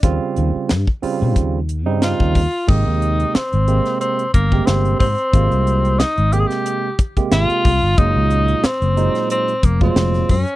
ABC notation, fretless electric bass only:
X:1
M:4/4
L:1/16
Q:"Swing 16ths" 1/4=91
K:Ebmix
V:1 name="Fretless electric bass" clef=bass
E,, z E,, z G,, z2 C, E,,3 G,,2 E,,2 z | [K:Ab] A,,, E,,3 z A,,,2 z3 G,,,2 G,,,2 A,, z | A,,, C,,4 A,,,2 z4 z A,,, z C,, G,,, | _G,,, D,,3 z G,,,2 z3 F,,,2 F,,,2 _G,, z |]